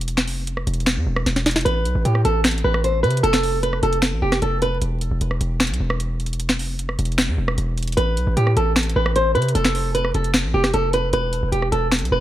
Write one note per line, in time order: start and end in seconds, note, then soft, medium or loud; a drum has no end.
0.00 0.29 E1 loud
0.00 closed hi-hat medium
0.08 closed hi-hat medium
0.17 finger snap medium
0.17 snare medium
0.27 0.65 F1 loud
0.27 open hi-hat medium
0.47 closed hi-hat medium
0.57 cross-stick medium
0.67 0.98 E1 loud
0.67 closed hi-hat medium
0.74 closed hi-hat medium
0.80 closed hi-hat soft
0.86 finger snap medium
0.86 snare loud
0.86 closed hi-hat medium
0.97 1.06 E2 loud
1.06 1.25 E1 loud
1.16 cross-stick medium
1.26 1.64 E1 loud
1.26 snare medium
1.26 closed hi-hat medium
1.36 snare medium
1.46 snare medium
1.46 closed hi-hat medium
1.51 closed hi-hat medium
1.56 snare medium
1.56 closed hi-hat medium
1.61 closed hi-hat medium
1.65 1.87 A1 loud
1.65 2.03 B4 loud
1.65 closed hi-hat medium
1.85 1.95 B1 loud
1.85 closed hi-hat medium
1.95 2.04 A1 loud
2.05 2.24 A2 loud
2.05 2.20 G4 medium
2.05 closed hi-hat medium
2.15 cross-stick medium
2.25 2.63 A1 loud
2.25 2.40 A4 medium
2.25 closed hi-hat medium
2.44 finger snap medium
2.44 snare loud
2.44 closed hi-hat medium
2.51 closed hi-hat medium
2.58 closed hi-hat medium
2.64 3.05 A1 loud
2.64 2.79 B4 medium
2.74 cross-stick medium
2.84 2.99 C5 medium
2.84 closed hi-hat medium
3.03 3.23 C3 loud
3.03 3.18 B4 medium
3.03 closed hi-hat soft
3.10 closed hi-hat medium
3.17 closed hi-hat medium
3.23 3.80 F1 loud
3.23 3.61 A4 loud
3.23 closed hi-hat medium
3.33 finger snap medium
3.33 snare medium
3.43 open hi-hat medium
3.63 3.78 B4 medium
3.63 closed hi-hat medium
3.73 cross-stick medium
3.83 4.14 F1 loud
3.83 3.98 A4 medium
3.83 closed hi-hat medium
3.93 closed hi-hat medium
4.02 finger snap medium
4.02 snare loud
4.02 closed hi-hat medium
4.12 4.22 A1 loud
4.22 4.41 F1 loud
4.22 4.37 G4 medium
4.32 cross-stick loud
4.32 snare medium
4.42 4.80 F1 loud
4.42 4.57 A4 medium
4.42 closed hi-hat medium
4.62 4.77 B4 loud
4.62 closed hi-hat medium
4.81 5.10 E1 loud
4.81 closed hi-hat medium
5.01 closed hi-hat medium
5.11 5.21 E1 loud
5.21 5.40 E1 loud
5.21 closed hi-hat medium
5.31 cross-stick medium
5.41 5.72 E1 loud
5.41 closed hi-hat medium
5.60 finger snap medium
5.60 snare loud
5.60 closed hi-hat medium
5.67 5.80 B1 loud
5.67 closed hi-hat medium
5.74 closed hi-hat medium
5.80 6.61 E1 loud
5.90 cross-stick medium
6.00 closed hi-hat medium
6.20 closed hi-hat soft
6.26 closed hi-hat medium
6.33 closed hi-hat medium
6.40 closed hi-hat medium
6.49 finger snap medium
6.49 snare medium
6.59 6.97 F1 loud
6.59 open hi-hat medium
6.79 closed hi-hat medium
6.89 cross-stick medium
6.99 7.30 E1 loud
6.99 closed hi-hat medium
7.05 closed hi-hat medium
7.12 closed hi-hat soft
7.18 finger snap medium
7.18 snare loud
7.18 closed hi-hat medium
7.28 7.38 E2 loud
7.38 7.57 E1 loud
7.48 cross-stick medium
7.58 7.96 E1 loud
7.58 closed hi-hat medium
7.78 closed hi-hat medium
7.83 closed hi-hat medium
7.88 closed hi-hat medium
7.92 closed hi-hat medium
7.97 8.19 A1 loud
7.97 8.34 B4 loud
7.97 closed hi-hat medium
8.17 8.26 B1 medium
8.17 closed hi-hat medium
8.27 8.36 A1 loud
8.37 8.56 A2 loud
8.37 8.52 G4 medium
8.37 closed hi-hat medium
8.47 cross-stick medium
8.56 8.94 A1 loud
8.56 8.72 A4 medium
8.56 closed hi-hat medium
8.76 finger snap medium
8.76 snare loud
8.76 closed hi-hat medium
8.83 closed hi-hat medium
8.89 closed hi-hat medium
8.96 9.37 A1 loud
8.96 9.11 B4 medium
9.06 cross-stick medium
9.16 9.31 C5 medium
9.16 closed hi-hat medium
9.35 9.54 C3 loud
9.35 9.50 B4 medium
9.35 closed hi-hat soft
9.42 closed hi-hat medium
9.49 closed hi-hat medium
9.55 10.12 F1 loud
9.55 9.92 A4 loud
9.55 closed hi-hat medium
9.65 finger snap medium
9.65 snare medium
9.75 open hi-hat medium
9.95 10.10 B4 medium
9.95 closed hi-hat medium
10.05 cross-stick medium
10.14 10.45 F1 loud
10.14 10.30 A4 medium
10.14 closed hi-hat medium
10.24 closed hi-hat medium
10.34 finger snap medium
10.34 snare loud
10.34 closed hi-hat medium
10.44 10.53 A1 loud
10.54 10.73 F1 loud
10.54 10.69 G4 medium
10.64 cross-stick loud
10.64 snare medium
10.74 11.12 F1 loud
10.74 10.89 A4 medium
10.74 closed hi-hat medium
10.93 11.09 B4 loud
10.93 closed hi-hat medium
11.13 11.42 E1 loud
11.13 11.50 B4 loud
11.13 closed hi-hat medium
11.33 closed hi-hat medium
11.43 11.52 E1 loud
11.52 11.71 E1 loud
11.52 11.67 G4 medium
11.52 closed hi-hat medium
11.62 cross-stick medium
11.72 12.03 E1 loud
11.72 11.87 A4 medium
11.72 closed hi-hat medium
11.91 finger snap medium
11.91 snare loud
11.91 closed hi-hat medium
11.99 12.11 B1 loud
11.99 closed hi-hat medium
12.05 closed hi-hat medium
12.12 12.20 E1 loud
12.12 12.20 B4 medium